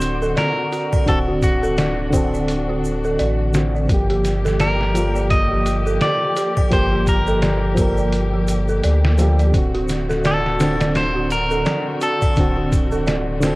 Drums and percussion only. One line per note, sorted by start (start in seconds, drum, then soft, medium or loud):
0.01 closed hi-hat medium
0.01 shaker loud
0.22 shaker medium
0.37 snare loud
0.37 closed hi-hat medium
0.37 shaker soft
0.72 closed hi-hat medium
0.72 shaker medium
0.93 kick loud
0.93 triangle medium
0.93 shaker medium
1.07 kick loud
1.07 closed hi-hat medium
1.07 shaker soft
1.42 kick loud
1.42 closed hi-hat medium
1.42 shaker medium
1.64 shaker medium
1.78 snare loud
1.78 closed hi-hat medium
1.78 shaker soft
2.13 kick medium
2.13 closed hi-hat medium
2.13 triangle medium
2.13 shaker loud
2.34 shaker medium
2.48 closed hi-hat medium
2.48 shaker soft
2.84 shaker medium
3.04 shaker medium
3.19 closed hi-hat medium
3.19 shaker soft
3.54 snare loud
3.54 closed hi-hat medium
3.54 shaker medium
3.76 shaker soft
3.89 kick loud
3.89 closed hi-hat medium
3.89 shaker soft
4.10 closed hi-hat soft
4.25 snare soft
4.25 closed hi-hat medium
4.25 shaker medium
4.46 snare soft
4.46 shaker soft
4.60 snare loud
4.60 closed hi-hat medium
4.60 shaker soft
4.81 snare medium
4.95 closed hi-hat medium
4.95 triangle medium
4.95 shaker loud
5.16 shaker medium
5.31 kick loud
5.31 closed hi-hat medium
5.31 shaker soft
5.66 closed hi-hat medium
5.66 shaker loud
5.87 shaker soft
6.01 snare loud
6.01 closed hi-hat medium
6.01 shaker soft
6.36 closed hi-hat medium
6.36 shaker medium
6.57 kick loud
6.57 triangle medium
6.57 shaker medium
6.71 kick loud
6.71 closed hi-hat medium
6.71 shaker soft
7.07 kick loud
7.07 closed hi-hat medium
7.07 shaker medium
7.27 shaker soft
7.42 snare loud
7.42 closed hi-hat medium
7.42 shaker soft
7.77 kick loud
7.77 closed hi-hat medium
7.77 triangle medium
7.77 shaker medium
7.97 shaker soft
8.12 closed hi-hat medium
8.12 shaker soft
8.48 closed hi-hat medium
8.48 shaker medium
8.68 shaker soft
8.83 closed hi-hat medium
8.83 shaker soft
9.05 snare loud
9.18 closed hi-hat medium
9.18 shaker medium
9.39 closed hi-hat soft
9.39 shaker medium
9.54 kick loud
9.54 closed hi-hat medium
9.54 shaker soft
9.75 closed hi-hat soft
9.89 snare soft
9.89 closed hi-hat medium
9.89 shaker medium
10.10 snare soft
10.10 shaker soft
10.24 snare loud
10.24 closed hi-hat medium
10.24 shaker soft
10.46 snare medium
10.60 snare loud
10.60 closed hi-hat medium
10.60 triangle medium
10.60 shaker medium
10.81 snare loud
10.81 closed hi-hat medium
10.81 shaker soft
10.95 snare loud
10.95 closed hi-hat medium
10.95 shaker soft
11.31 closed hi-hat medium
11.31 shaker medium
11.51 shaker medium
11.66 snare loud
11.66 closed hi-hat medium
11.66 shaker soft
12.01 closed hi-hat medium
12.01 shaker medium
12.22 kick loud
12.22 triangle medium
12.22 shaker medium
12.36 kick loud
12.36 closed hi-hat medium
12.36 shaker soft
12.72 kick loud
12.72 closed hi-hat medium
12.72 shaker medium
12.92 shaker soft
13.07 snare loud
13.07 closed hi-hat medium
13.07 shaker soft
13.42 snare loud
13.42 closed hi-hat medium
13.42 triangle medium
13.42 shaker medium